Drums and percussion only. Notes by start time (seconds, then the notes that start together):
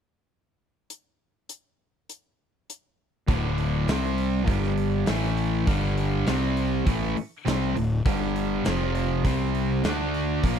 0.90 closed hi-hat
1.49 closed hi-hat
2.09 closed hi-hat
2.70 closed hi-hat
3.28 kick, open hi-hat
3.58 open hi-hat
3.88 snare, open hi-hat
4.18 open hi-hat
4.47 kick, open hi-hat
4.64 snare
4.77 open hi-hat
5.06 snare, open hi-hat
5.37 open hi-hat
5.67 kick, open hi-hat
5.97 open hi-hat
6.27 snare, open hi-hat
6.57 open hi-hat
6.87 kick, open hi-hat
7.17 open hi-hat
7.47 snare, open hi-hat
7.76 open hi-hat
8.06 kick, open hi-hat
8.36 open hi-hat
8.65 snare, open hi-hat
8.95 open hi-hat
9.25 kick, open hi-hat
9.55 open hi-hat
9.84 snare, open hi-hat
10.14 open hi-hat
10.43 kick, open hi-hat